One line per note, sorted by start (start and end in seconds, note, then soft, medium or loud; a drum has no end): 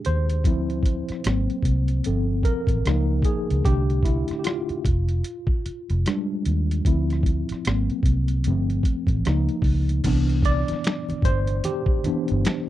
0.00 0.46 G#3 soft
0.00 0.47 D4 medium
0.00 0.46 G4 medium
0.00 0.11 G#4 medium
0.05 0.45 D#2 medium
0.05 1.61 C5 medium
0.05 closed hi-hat medium
0.30 closed hi-hat soft
0.44 1.02 D2 medium
0.44 1.21 F3 medium
0.44 1.21 C4 soft
0.44 1.22 E4 medium
0.44 kick medium
0.44 closed hi-hat medium
0.70 closed hi-hat soft
0.83 kick medium
0.83 closed hi-hat medium
1.09 muted fingered electric bass stroke soft
1.09 cross-stick soft
1.09 closed hi-hat soft
1.24 1.47 G#1 medium
1.24 2.01 F#3 soft
1.24 2.01 A#3 soft
1.24 2.02 C4 soft
1.24 cross-stick loud
1.24 closed hi-hat medium
1.50 muted fingered electric bass stroke soft
1.50 closed hi-hat soft
1.63 2.00 C2 medium
1.63 kick medium
1.63 closed hi-hat medium
1.88 closed hi-hat soft
2.04 2.42 G1 medium
2.04 2.81 F3 soft
2.04 2.82 C4 medium
2.04 2.81 A4 soft
2.04 closed hi-hat medium
2.43 3.21 A#4 loud
2.43 kick medium
2.43 closed hi-hat medium
2.67 2.82 A1 medium
2.67 kick medium
2.67 closed hi-hat soft
2.85 3.21 C#2 medium
2.85 3.42 F3 medium
2.85 3.42 A#3 medium
2.85 3.42 D#4 medium
2.85 cross-stick medium
2.85 closed hi-hat medium
3.22 3.66 G#4 medium
3.22 kick medium
3.22 closed hi-hat medium
3.50 3.64 C#2 medium
3.50 closed hi-hat soft
3.65 4.22 C2 medium
3.65 4.81 D3 soft
3.65 4.82 A3 soft
3.65 4.82 D4 medium
3.65 4.06 G4 loud
3.65 kick medium
3.65 closed hi-hat medium
3.90 closed hi-hat soft
4.03 4.40 E4 medium
4.03 kick medium
4.03 closed hi-hat medium
4.28 muted fingered electric bass stroke soft
4.28 cross-stick soft
4.28 closed hi-hat soft
4.39 4.45 G4 medium
4.44 9.21 F4 medium
4.44 cross-stick loud
4.44 closed hi-hat medium
4.69 muted fingered electric bass stroke soft
4.69 closed hi-hat soft
4.85 5.21 F1 medium
4.85 kick medium
4.85 closed hi-hat medium
5.09 closed hi-hat soft
5.24 closed hi-hat medium
5.47 kick medium
5.66 muted fingered electric bass stroke soft
5.66 closed hi-hat medium
5.90 6.04 F1 medium
5.90 closed hi-hat soft
6.06 6.82 G3 medium
6.06 6.82 G#3 soft
6.06 6.82 D4 medium
6.06 cross-stick medium
6.06 closed hi-hat medium
6.45 6.81 D#2 medium
6.45 closed hi-hat medium
6.71 closed hi-hat soft
6.85 7.43 D2 medium
6.85 7.42 F3 medium
6.85 7.42 C4 soft
6.85 7.42 E4 medium
6.85 kick medium
6.85 closed hi-hat medium
7.10 cross-stick soft
7.10 closed hi-hat soft
7.23 kick medium
7.23 closed hi-hat soft
7.49 muted fingered electric bass stroke soft
7.49 cross-stick soft
7.49 closed hi-hat soft
7.65 7.87 G#1 medium
7.65 8.42 F#3 soft
7.65 8.42 A#3 soft
7.65 8.42 C4 soft
7.65 cross-stick loud
7.65 closed hi-hat medium
7.90 muted fingered electric bass stroke soft
7.90 closed hi-hat soft
8.03 8.48 C2 medium
8.03 kick medium
8.03 closed hi-hat medium
8.28 closed hi-hat soft
8.44 8.82 G1 medium
8.44 9.22 F3 soft
8.44 9.22 A3 soft
8.44 9.22 C4 medium
8.44 closed hi-hat medium
8.70 closed hi-hat soft
8.83 kick medium
8.83 closed hi-hat medium
9.07 9.22 A1 medium
9.07 kick medium
9.07 closed hi-hat soft
9.25 9.47 C#2 medium
9.25 9.81 F3 medium
9.25 9.82 A#3 soft
9.25 9.82 D#4 medium
9.25 cross-stick medium
9.25 closed hi-hat medium
9.49 closed hi-hat soft
9.62 9.99 C#2 medium
9.62 kick medium
9.62 open hi-hat soft
9.89 closed hi-hat soft
10.04 10.62 C2 loud
10.04 11.21 E3 medium
10.04 11.21 B3 medium
10.04 11.22 D4 medium
10.04 kick medium
10.04 closed hi-hat medium
10.04 crash medium
10.04 muted conga soft
10.04 low conga medium
10.29 closed hi-hat soft
10.42 11.27 D5 medium
10.42 kick medium
10.42 closed hi-hat medium
10.68 muted fingered electric bass stroke soft
10.68 snare soft
10.68 closed hi-hat soft
10.68 high conga medium
10.84 finger snap loud
10.84 snare loud
10.84 closed hi-hat medium
11.09 muted fingered electric bass stroke soft
11.09 closed hi-hat soft
11.09 high conga medium
11.22 11.59 G1 medium
11.22 11.66 C5 loud
11.22 kick medium
11.22 closed hi-hat medium
11.22 muted conga soft
11.22 low conga medium
11.47 closed hi-hat soft
11.64 12.69 G4 medium
11.64 closed hi-hat medium
11.64 muted conga soft
11.64 high conga medium
11.86 kick medium
12.04 12.41 E3 soft
12.04 12.41 B3 medium
12.04 12.42 D4 medium
12.04 muted fingered electric bass stroke soft
12.04 closed hi-hat medium
12.04 high conga medium
12.28 12.44 G1 loud
12.28 closed hi-hat soft
12.45 finger snap medium
12.45 snare loud
12.45 closed hi-hat medium
12.45 muted conga soft